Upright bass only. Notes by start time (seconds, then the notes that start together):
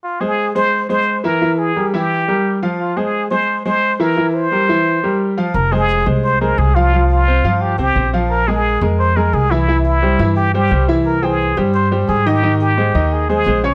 5.54 F1
6.06 C2
6.58 C2
7.44 G2
7.79 C2
7.96 A#1
8.81 F2
9.33 C2
10.19 G2
10.71 C2
11.57 G2
12.09 G#2
12.95 D#2
13.46 A#1